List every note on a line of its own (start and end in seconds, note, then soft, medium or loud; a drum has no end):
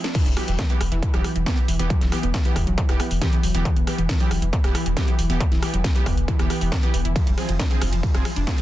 0.00 swell medium
0.04 0.11 D4 loud
0.04 snare loud
0.04 closed hi-hat medium
0.15 0.22 E3 loud
0.15 8.62 E3 medium
0.15 kick loud
0.15 closed hi-hat medium
0.15 crash loud
0.26 0.37 E1 medium
0.26 0.36 E3 medium
0.26 closed hi-hat medium
0.37 0.48 E3 medium
0.37 0.44 F#3 medium
0.37 0.48 B3 medium
0.37 0.48 G4 medium
0.37 cross-stick medium
0.37 open hi-hat loud
0.48 0.59 E1 medium
0.48 0.54 E3 medium
0.48 closed hi-hat medium
0.59 kick loud
0.59 snare loud
0.59 closed hi-hat medium
0.70 0.80 E3 medium
0.70 0.80 B3 medium
0.70 0.74 B3 medium
0.70 0.80 G4 loud
0.70 closed hi-hat medium
0.81 0.91 E1 loud
0.81 cross-stick medium
0.81 open hi-hat loud
0.92 1.02 E1 medium
0.92 0.98 E3 loud
0.92 closed hi-hat medium
1.03 1.13 E3 medium
1.03 kick loud
1.03 closed hi-hat medium
1.14 1.24 E1 medium
1.14 1.31 E3 medium
1.14 1.20 F#3 medium
1.14 1.31 B3 medium
1.14 1.31 G4 medium
1.14 cross-stick medium
1.14 closed hi-hat medium
1.24 1.31 E3 medium
1.24 cross-stick medium
1.24 open hi-hat loud
1.36 1.46 E1 medium
1.36 1.42 E3 medium
1.36 closed hi-hat medium
1.46 1.64 E3 medium
1.46 1.50 B3 medium
1.46 1.64 B3 medium
1.46 1.64 G4 medium
1.46 kick loud
1.46 snare loud
1.46 closed hi-hat medium
1.58 closed hi-hat medium
1.68 1.79 E1 loud
1.68 1.75 E3 loud
1.68 open hi-hat loud
1.79 1.90 E1 medium
1.79 1.90 E3 medium
1.79 1.89 E3 medium
1.79 1.90 B3 medium
1.79 1.90 G4 medium
1.79 closed hi-hat medium
1.90 1.97 F#3 medium
1.90 kick loud
1.90 closed hi-hat medium
2.01 2.12 E1 medium
2.01 2.08 E3 medium
2.01 snare soft
2.01 closed hi-hat medium
2.12 2.19 E3 medium
2.12 2.23 E3 medium
2.12 2.23 B3 medium
2.12 2.23 G4 medium
2.12 cross-stick medium
2.12 open hi-hat loud
2.23 2.34 E1 medium
2.23 2.27 B3 medium
2.23 closed hi-hat medium
2.34 kick loud
2.34 snare loud
2.34 closed hi-hat medium
2.45 2.52 E3 loud
2.45 2.56 E3 medium
2.45 2.56 B3 medium
2.45 2.56 G4 medium
2.45 closed hi-hat medium
2.56 2.66 E1 loud
2.56 2.66 E3 medium
2.56 kick medium
2.56 cross-stick medium
2.56 open hi-hat loud
2.67 2.78 E1 medium
2.67 2.73 F#3 medium
2.67 closed hi-hat medium
2.78 2.84 E3 medium
2.78 kick loud
2.78 closed hi-hat medium
2.89 2.99 E1 medium
2.89 2.95 E3 medium
2.89 3.06 E3 medium
2.89 3.06 B3 medium
2.89 3.06 G4 loud
2.89 cross-stick medium
2.89 closed hi-hat medium
3.00 3.04 B3 medium
3.00 cross-stick medium
3.00 open hi-hat loud
3.11 3.21 E1 medium
3.11 open hi-hat medium
3.21 3.39 E3 medium
3.21 3.28 E3 loud
3.21 3.39 B3 medium
3.21 3.39 G4 loud
3.21 kick loud
3.21 snare loud
3.21 closed hi-hat medium
3.33 3.42 E3 medium
3.33 closed hi-hat medium
3.43 3.54 E1 loud
3.43 3.50 F#3 medium
3.43 open hi-hat loud
3.55 3.65 E1 medium
3.55 3.65 E3 medium
3.55 3.61 E3 medium
3.55 3.65 B3 medium
3.55 3.65 G4 medium
3.55 closed hi-hat medium
3.65 3.72 E3 medium
3.65 kick loud
3.65 closed hi-hat medium
3.76 3.87 E1 medium
3.76 3.80 B3 medium
3.76 closed hi-hat medium
3.87 3.98 E3 medium
3.87 3.98 B3 medium
3.87 3.98 G4 loud
3.87 cross-stick medium
3.87 open hi-hat loud
3.98 4.09 E1 medium
3.98 4.05 E3 loud
3.98 closed hi-hat medium
4.09 4.19 E3 medium
4.09 kick loud
4.09 snare loud
4.09 closed hi-hat medium
4.20 4.31 E3 medium
4.20 4.27 F#3 medium
4.20 4.31 B3 medium
4.20 4.31 G4 loud
4.20 closed hi-hat medium
4.31 4.42 E1 loud
4.31 4.38 E3 medium
4.31 cross-stick medium
4.31 open hi-hat loud
4.42 4.53 E1 medium
4.42 4.49 E3 medium
4.42 closed hi-hat medium
4.53 4.57 B3 medium
4.53 kick loud
4.53 closed hi-hat medium
4.64 4.75 E1 medium
4.64 4.81 E3 medium
4.64 4.81 B3 medium
4.64 4.81 G4 medium
4.64 cross-stick medium
4.64 closed hi-hat medium
4.75 4.81 E3 loud
4.75 cross-stick medium
4.75 open hi-hat loud
4.86 4.97 E1 medium
4.86 4.96 E3 medium
4.86 closed hi-hat medium
4.97 5.14 E3 medium
4.97 5.03 F#3 medium
4.97 5.14 B3 medium
4.97 5.14 G4 loud
4.97 kick loud
4.97 snare loud
4.97 closed hi-hat medium
5.08 5.14 E3 medium
5.08 closed hi-hat medium
5.19 5.29 E1 loud
5.19 5.25 E3 medium
5.19 open hi-hat loud
5.30 5.40 E1 medium
5.30 5.40 E3 medium
5.30 5.34 B3 medium
5.30 5.40 B3 medium
5.30 5.40 G4 medium
5.30 closed hi-hat medium
5.40 kick loud
5.40 closed hi-hat medium
5.52 5.62 E1 medium
5.52 5.58 E3 loud
5.52 snare soft
5.52 closed hi-hat medium
5.62 5.73 E3 medium
5.62 5.72 E3 medium
5.62 5.73 B3 medium
5.62 5.73 G4 medium
5.62 cross-stick loud
5.62 open hi-hat loud
5.74 5.84 E1 medium
5.74 5.80 F#3 medium
5.74 closed hi-hat medium
5.84 5.91 E3 medium
5.84 kick loud
5.84 snare loud
5.84 closed hi-hat medium
5.95 6.02 E3 medium
5.95 6.06 E3 medium
5.95 6.06 B3 medium
5.95 6.06 G4 medium
5.95 closed hi-hat soft
6.06 6.17 E1 loud
6.06 6.10 B3 medium
6.06 kick medium
6.06 cross-stick loud
6.06 open hi-hat loud
6.17 6.28 E1 medium
6.17 closed hi-hat soft
6.28 6.35 E3 loud
6.28 kick loud
6.28 closed hi-hat medium
6.39 6.50 E1 medium
6.39 6.49 E3 medium
6.39 6.48 E3 medium
6.39 6.48 B3 medium
6.39 6.48 G4 medium
6.39 cross-stick medium
6.39 closed hi-hat medium
6.50 6.54 E3 medium
6.50 6.67 E3 medium
6.50 6.67 B3 medium
6.50 6.67 G4 medium
6.50 cross-stick medium
6.50 open hi-hat loud
6.61 6.72 E1 medium
6.61 6.65 E4 medium
6.61 open hi-hat medium
6.72 6.82 D3 medium
6.72 kick loud
6.72 snare loud
6.72 closed hi-hat medium
6.83 6.94 E3 medium
6.83 6.90 B3 loud
6.83 6.94 B3 medium
6.83 6.94 G4 loud
6.83 closed hi-hat medium
6.94 7.04 E1 loud
6.94 7.00 E3 medium
6.94 open hi-hat loud
7.05 7.16 E1 medium
7.05 7.11 E4 medium
7.05 closed hi-hat medium
7.16 7.26 F3 medium
7.16 kick loud
7.16 closed hi-hat medium
7.16 ride medium
7.27 7.37 F1 medium
7.27 7.33 G3 medium
7.27 closed hi-hat soft
7.27 ride medium
7.38 7.44 F3 medium
7.38 7.49 F3 medium
7.38 7.49 C4 medium
7.38 7.49 G#4 medium
7.38 cross-stick medium
7.38 open hi-hat loud
7.38 ride medium
7.49 7.59 F1 medium
7.49 7.55 F3 medium
7.49 closed hi-hat medium
7.49 ride medium
7.59 7.64 D4 medium
7.59 kick loud
7.59 snare loud
7.59 closed hi-hat medium
7.59 ride medium
7.71 7.81 F3 medium
7.71 7.81 C4 medium
7.71 7.81 G#4 loud
7.71 closed hi-hat soft
7.71 ride medium
7.81 7.92 F1 loud
7.81 7.88 F3 loud
7.81 cross-stick medium
7.81 open hi-hat loud
7.81 ride medium
7.93 8.03 F1 medium
7.93 8.02 F3 medium
7.93 closed hi-hat soft
7.93 ride medium
8.03 8.10 G3 medium
8.03 kick loud
8.03 closed hi-hat medium
8.03 ride medium
8.14 8.25 F1 medium
8.14 8.21 F3 medium
8.14 8.32 F3 medium
8.14 8.32 C4 medium
8.14 8.32 G#4 loud
8.14 cross-stick medium
8.14 closed hi-hat medium
8.14 ride medium
8.25 8.32 F3 medium
8.25 cross-stick loud
8.25 open hi-hat loud
8.25 ride medium
8.36 8.47 F1 medium
8.36 8.40 D4 medium
8.36 closed hi-hat medium
8.36 ride medium
8.47 8.62 F3 medium
8.47 8.62 C4 medium
8.47 8.62 G#4 loud
8.47 kick loud
8.47 snare loud
8.47 closed hi-hat medium
8.47 ride medium
8.58 8.62 F3 loud
8.58 closed hi-hat medium
8.58 ride medium